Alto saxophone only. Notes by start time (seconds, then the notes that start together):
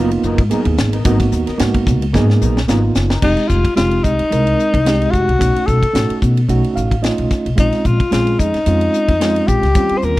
3.23 D#4
3.48 F4
3.76 F4
4.04 D#4
5.11 F#4
5.66 A4
7.60 D#4
7.87 F4
8.13 F4
8.39 D#4
9.47 G4
9.98 C5
10.04 A#4